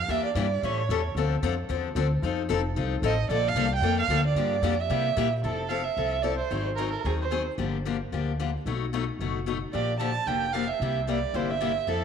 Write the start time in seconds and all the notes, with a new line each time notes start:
Already playing: F5
0.08 E2 E3 A#3 D4 G4 E5
0.25 D5
0.35 G2 E3 A#3 D4 G4 D5
0.62 A2 E3 G3 C#4 E4 A4 C#5
0.89 E2 E3 G3 C#4 E4 A4
1.15 D2 D3 F3 C4 D4 A4
1.42 F2 D3 F3 C4 D4 A4
1.69 E2 D3 F3 C4 D4 A4
1.95 D2 D3 F3 C4 D4 A4
2.22 F2 F3 C4 D#4 A4
2.49 F1 F3 C4 D#4 A4
2.76 C2 F3 C4 D#4 A4
3.02 A1 F3 C4 D#4 A4 D#5
3.29 A#1 D3 F3 A#3 D4 A4 D5
3.48 F5
3.55 C2 D3 F3 A#3 D4 A4
3.76 G5
3.81 F2 D3 F3 A#3 D4 A4
4.01 F5
4.08 D2 D3 F3 A#3 D4 A4
4.27 D5
4.35 G2 D3 F3 A#3 D4 G4
4.62 F2 D3 F3 A#3 D4 G4
4.80 E5
4.89 C3 G3 A#3 E4 G4
5.16 A#2 C3 G3 A#3 E4 G4
5.43 F1 F3 C4 E4 A4
5.69 F3 C4 E4 A4 F5
5.84 E5
5.97 C2 F3 C4 E4 A4
6.22 F3 C4 E4 A4 D5
6.38 C5
6.50 G#1 D#3 F#3 C4 D#4 G#4
6.76 D#3 F#3 C4 D#4 G#4 A#4
6.90 A4 A#4
7.04 D#2 D#3 F#3 C4 D#4 G#4
7.22 C5
7.31 D#3 F#3 C4 D#4 G#4
7.58 G1 D3 F3 A#3 D4 G4
7.85 D3 F3 A#3 D4 G4
8.12 D2 D3 F3 A#3 D4 G4
8.40 D3 F3 A#3 D4 G4
8.65 B1 B2 F#3 A3 D#4 F#4
8.93 B2 F#3 A3 D#4 F#4
9.19 F#1 B2 F#3 A3 D#4 F#4
9.46 B2 F#3 A3 D#4 F#4
9.73 A#1 D3 F3 A#3 D4 G4 D5
10.00 D3 F3 A#3 D4 G4 A5
10.26 F1 D3 F3 A#3 D4 G4 G5
10.53 D3 F3 A#3 D4 G4 F5
10.67 E5
10.80 C2 C3 G3 A#3 E4 G4
11.07 C3 G3 A#3 E4 G4 D5
11.33 G1 C3 G3 A#3 E4 G4 C5
11.50 E5
11.61 C3 G3 A#3 E4 G4
11.87 F2 F3 C4 E4 A4